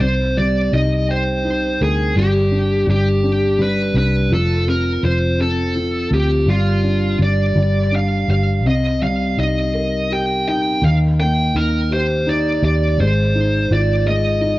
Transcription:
0.00 fingered electric bass C2, felt piano C3, lead electric guitar C5
0.37 felt piano G3, lead electric guitar D5
0.73 fingered electric bass C2, felt piano D#4, lead electric guitar D#5
1.09 lead electric guitar C5, felt piano G5
1.44 felt piano D#4
1.81 fingered electric bass D2, lead electric guitar G#4, felt piano A#4
2.16 fingered electric bass G1, felt piano G3, lead electric guitar G4
2.51 felt piano D4
2.87 fingered electric bass G1, felt piano G3, lead electric guitar G4
3.23 felt piano D4
3.59 felt piano G3, lead electric guitar B4
3.94 fingered electric bass C2, felt piano D4, lead electric guitar B4
4.30 fingered electric bass F1, felt piano F3, lead electric guitar A4
4.67 felt piano C4, lead electric guitar A#4
5.03 fingered electric bass F1, felt piano F3, lead electric guitar C5
5.38 felt piano C4, lead electric guitar A4
5.76 felt piano F3
6.11 fingered electric bass D2, felt piano C4, lead electric guitar G4
6.46 fingered electric bass G1, felt piano G3, lead electric guitar F4
6.84 felt piano D4
7.19 fingered electric bass G1, felt piano G3
7.23 lead electric guitar D5
7.55 fingered electric bass G1, felt piano G3
7.92 felt piano D4, lead electric guitar F5
8.28 fingered electric bass G1, felt piano G4, lead electric guitar F5
8.64 fingered electric bass C2, felt piano C3, lead electric guitar D#5
9.02 felt piano G3, lead electric guitar F5
9.37 fingered electric bass C2, felt piano D#4, lead electric guitar D#5
9.74 felt piano A#4
10.10 felt piano G4, lead electric guitar G5
10.47 fingered electric bass A#1, felt piano D#4, lead electric guitar G5
10.82 fingered electric bass D#2, felt piano D#3, lead electric guitar F5
11.20 felt piano A#3, lead electric guitar G5
11.55 fingered electric bass D#2, felt piano D#4, lead electric guitar A#4
11.91 felt piano G4, lead electric guitar C5
12.27 felt piano D#4, lead electric guitar D5
12.62 fingered electric bass D#2, felt piano G4, lead electric guitar D5
12.98 fingered electric bass G#1, felt piano G#3, lead electric guitar C5
13.35 felt piano D#4
13.71 fingered electric bass G#1, felt piano F4, lead electric guitar D5
14.06 felt piano G#3, lead electric guitar D#5
14.41 felt piano D#4

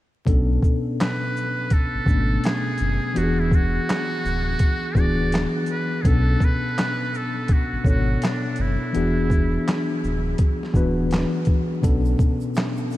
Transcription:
0.26 sub bass B1, tine electric piano B2 B3 C#4 D4 A4, kick, closed hi-hat
0.62 kick, shaker
1.00 muted trumpet B4, snare, clap, closed hi-hat
1.37 shaker
1.70 muted trumpet A4, kick, closed hi-hat
1.94 sub bass G#1
2.06 sub bass G#1, tine electric piano B2 A3 B3 C#4 D4, kick, shaker
2.44 muted trumpet G#4, snare, clap, closed hi-hat
2.78 sub bass F#1, closed hi-hat, shaker
3.14 sub bass E1, tine electric piano E3 B3 D4 F#4 G4, muted trumpet F#4, closed hi-hat
3.23 tine electric piano G#4
3.40 muted trumpet E4
3.51 muted trumpet F#4, kick, shaker
3.89 snare, clap, closed hi-hat
4.25 sub bass D1, shaker
4.59 kick, closed hi-hat
4.94 sub bass D1, tine electric piano E3 B3 D4 F#4 G#4, kick, shaker
4.99 muted trumpet D5
5.32 snare, clap, closed hi-hat
5.66 closed hi-hat, shaker
5.71 muted trumpet B4
6.02 sub bass B1, tine electric piano B2 B3 C#4 D4, muted trumpet G#4, kick, closed hi-hat
6.07 tine electric piano A4, muted trumpet A4
6.40 kick, shaker
6.44 muted trumpet B4
6.78 snare, clap, closed hi-hat
7.14 muted trumpet A4, shaker
7.48 kick, closed hi-hat
7.53 muted trumpet F#4
7.72 sub bass G#1
7.84 sub bass G#1, tine electric piano B2 B3 D4 A4 C#5, kick, shaker
7.89 muted trumpet F#4
8.22 muted trumpet D4, snare, clap, closed hi-hat
8.56 sub bass F#1, closed hi-hat, shaker
8.61 muted trumpet E4
8.93 sub bass E1, tine electric piano E3 B3 D4 F#4 G#4, closed hi-hat
9.30 kick, shaker
9.68 snare, clap, closed hi-hat
10.04 sub bass D1, shaker
10.38 kick, closed hi-hat
10.63 snare
10.73 sub bass D1, tine electric piano E3 B3 D4 F#4 B4, kick, shaker
11.11 snare, clap, closed hi-hat
11.45 kick, closed hi-hat, shaker
11.82 sub bass B1, tine electric piano B2 B3 C#4 D4 A4, kick, closed hi-hat, shaker
12.05 shaker
12.19 kick, shaker
12.41 shaker
12.55 snare, clap, closed hi-hat, shaker
12.77 shaker
12.91 shaker
12.93 shaker

